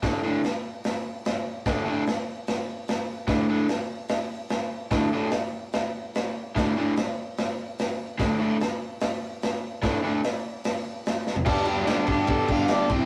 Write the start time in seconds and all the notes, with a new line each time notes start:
0.03 D2 A2 D3, kick, snare, open hi-hat
0.23 D2 A2 D3
0.44 snare, open hi-hat
0.84 snare, open hi-hat
1.25 snare, open hi-hat
1.66 D2 A2 D3, kick, snare, open hi-hat
1.85 D2 A2 D3
2.07 snare, open hi-hat
2.47 snare, open hi-hat
2.88 snare, open hi-hat
3.27 D2 A2 D3, kick, snare, open hi-hat
3.49 D2 A2 D3
3.68 snare, open hi-hat
4.09 snare, open hi-hat
4.49 snare, open hi-hat
4.91 D2 A2 D3, kick, snare, open hi-hat
5.12 D2 A2 D3
5.31 snare, open hi-hat
5.73 snare, open hi-hat
6.15 snare, open hi-hat
6.55 D2 A2 D3, kick, snare, open hi-hat
6.76 D2 A2 D3
6.96 snare, open hi-hat
7.37 snare, open hi-hat
7.79 snare, open hi-hat
8.18 D2 A2 D3, kick, snare, open hi-hat
8.39 D2 A2 D3
8.60 snare, open hi-hat
9.00 snare, open hi-hat
9.42 snare, open hi-hat
9.82 D2 A2 D3, kick, snare, open hi-hat
10.03 D2 A2 D3
10.24 snare, open hi-hat
10.64 snare, open hi-hat
11.06 snare, open hi-hat
11.27 snare
11.36 floor tom
11.45 G2 D3 G3 B3 D4 G4, kick, crash
11.65 B3 D4 G4, ride
11.70 G3
11.85 G2 D3 G3 B3 D4, snare, ride
11.90 G4
12.07 B3 D4 G4, kick, ride
12.11 G3 G4
12.26 G3 B3 D4 G4, kick, ride
12.31 A4
12.48 D3 G3 B3 D4 G4 F5, kick, ride
12.53 G2
12.68 G3 B3 D4, snare, ride
12.72 G4 D5
12.89 G3 C4 E4 G4 C5 G5, kick, ride
12.94 C3